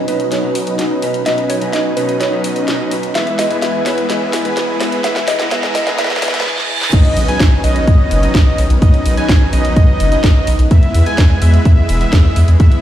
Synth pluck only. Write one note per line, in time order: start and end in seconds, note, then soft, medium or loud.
0.08 0.32 B4 medium
0.32 0.76 C#5 medium
1.26 1.50 D#5 loud
1.49 1.72 C#5 medium
1.73 1.97 D#5 loud
1.97 2.21 B4 medium
2.20 2.64 C#5 medium
3.15 3.39 E5 loud
3.39 3.61 D#5 loud
3.62 3.87 E5 loud
3.86 4.10 C#5 medium
4.10 4.54 D#5 medium
5.04 5.15 E5 loud
5.28 5.50 D#5 loud
5.51 5.76 E5 loud
5.75 5.86 D#5 loud
5.99 6.43 E5 loud